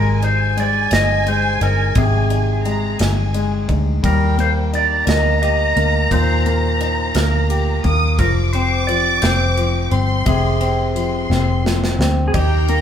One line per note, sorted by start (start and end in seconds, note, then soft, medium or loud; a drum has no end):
0.00 0.88 G#1 medium
0.00 0.55 G#3 medium
0.00 0.24 A#4 medium
0.00 2.61 G#5 loud
0.22 0.90 D#4 medium
0.22 0.59 C5 medium
0.22 ride soft
0.57 1.25 G#3 medium
0.57 0.91 D5 loud
0.57 ride soft
0.91 1.57 G1 medium
0.91 1.60 D#4 medium
0.91 1.28 D#5 loud
0.91 snare loud
0.91 ride medium
1.26 2.61 G#3 medium
1.26 1.62 C5 medium
1.26 ride soft
1.61 1.94 G1 medium
1.61 2.29 D#4 medium
1.61 1.98 A#4 medium
1.61 ride soft
1.95 2.96 G#1 medium
1.95 4.00 C3 medium
1.95 2.97 G#4 medium
1.95 kick loud
1.95 ride medium
2.30 2.98 D#4 medium
2.30 ride soft
2.64 3.33 G#3 medium
2.64 2.97 A#5 medium
2.64 ride soft
2.99 3.65 G1 medium
2.99 3.67 D#4 medium
2.99 3.69 G#5 medium
2.99 snare medium
2.99 ride medium
3.34 4.02 G#3 medium
3.34 ride soft
3.68 4.01 D2 medium
3.68 4.02 D#4 soft
3.68 kick medium
3.68 ride soft
4.03 5.04 D#2 loud
4.03 6.07 G3 medium
4.03 4.37 A#4 medium
4.03 4.69 G5 medium
4.03 kick loud
4.03 ride medium
4.38 5.05 A#3 medium
4.38 4.49 C5 medium
4.38 ride soft
4.73 6.07 D#4 medium
4.73 5.08 D5 medium
4.73 7.81 A#5 loud
4.73 ride soft
5.06 5.72 D2 medium
5.06 5.75 A#3 medium
5.06 5.40 D#5 loud
5.06 snare loud
5.06 ride medium
5.42 6.77 G4 medium
5.42 6.07 D#5 medium
5.42 ride soft
5.76 6.09 D2 medium
5.76 6.45 A#3 medium
5.76 ride soft
6.11 7.11 D#2 loud
6.11 8.15 A#2 medium
6.11 7.12 C5 loud
6.11 kick loud
6.11 ride medium
6.46 7.14 A#3 medium
6.46 ride soft
6.81 8.15 D#4 medium
6.81 ride soft
7.14 7.80 D2 medium
7.14 7.83 A#3 soft
7.14 7.89 A#4 medium
7.14 snare loud
7.14 ride medium
7.50 8.17 G4 medium
7.50 ride soft
7.84 8.17 D#2 medium
7.84 8.18 A#3 medium
7.84 8.19 D#6 loud
7.84 kick medium
7.84 ride soft
8.18 9.19 F1 medium
8.18 8.87 F3 medium
8.18 8.28 A#4 medium
8.18 9.88 D6 loud
8.18 kick loud
8.18 ride medium
8.53 9.21 C4 medium
8.53 8.87 C5 medium
8.53 ride soft
8.87 9.56 F3 medium
8.87 9.23 D5 medium
8.87 ride soft
9.22 9.88 F1 medium
9.22 9.90 C4 medium
9.22 10.29 C5 medium
9.22 snare loud
9.22 ride medium
9.57 10.92 F3 medium
9.57 ride soft
9.91 10.24 G1 medium
9.91 10.59 C4 medium
9.91 10.92 C6 loud
9.91 ride soft
10.26 11.26 F1 medium
10.26 12.30 C3 medium
10.26 11.62 G#4 medium
10.26 kick loud
10.26 ride medium
10.61 11.28 C4 medium
10.61 ride soft
10.95 11.62 F3 medium
10.95 11.95 C6 medium
10.95 ride soft
11.30 11.95 F1 medium
11.30 11.98 C4 medium
11.30 snare medium
11.64 12.32 F3 medium
11.64 snare medium
11.84 snare medium
11.99 12.32 D2 medium
11.99 12.33 C4 medium
11.99 snare loud
12.28 12.34 G#4 medium
12.34 12.81 D#2 medium
12.34 12.81 A#3 medium
12.34 12.81 D#4 medium
12.34 12.70 G4 medium
12.34 12.81 G5 medium
12.34 12.81 A#5 loud
12.34 kick loud
12.34 ride medium
12.68 12.81 A#3 soft
12.68 12.81 A#4 medium
12.68 ride soft